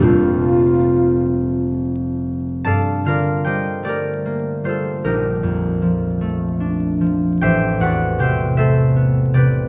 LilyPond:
<<
  \new Staff \with { instrumentName = "Harp" } { \time 3/4 \key g \minor \tempo 4 = 75 r2. | <a' d'' f'' a''>8 <f' bes' d'' f''>8 <g' c'' ees'' g''>8 <g' bes' d''>4 <f' a' c''>8 | <ees' g' bes'>2. | <g' c'' e'' g''>8 <fis' b' d'' fis''>8 <g' c'' e'' g''>8 <a' c'' e''>4 <g' b' d''>8 | }
  \new Staff \with { instrumentName = "Harp" } { \clef bass \time 3/4 \key g \minor <f,, f, g a c' f' g' a'>2. | g,8 d8 g8 a8 bes8 g8 | bes,,8 f,8 f8 a8 d'8 f8 | a,,8 e,8 c8 a8 b8 c8 | }
  \new Staff \with { instrumentName = "Alto flute" } { \time 3/4 \key g \minor f'2 r4 | r2. | r2. | r2. | }
>>